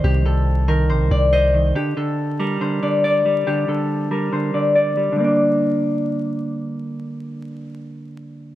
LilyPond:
<<
  \new Staff \with { instrumentName = "Harp" } { \time 4/4 \key g \minor \tempo 4 = 140 g'8 a'4 bes'8 c''8 d''8 ees''4 | g'8 a'4 bes'8 c''8 d''8 d''4 | g'8 a'4 bes'8 c''8 d''8 d''4 | d''2. r4 |
r1 | }
  \new Staff \with { instrumentName = "Clean electric guitar" } { \clef bass \time 4/4 \key g \minor <c ees c''>8 c4 ees8 c8 c8 c''8 ees8 | d8 d4 g8 d8 d8 d''8 g8 | d8 d4 g8 d8 d8 d''8 g8 | <d g bes d'>1~ |
<d g bes d'>1 | }
  \new Staff \with { instrumentName = "808-style bass" } { \clef bass \time 4/4 \key g \minor c,2 bes,,16 c,16 c,4. | r1 | r1 | r1 |
r1 | }
>>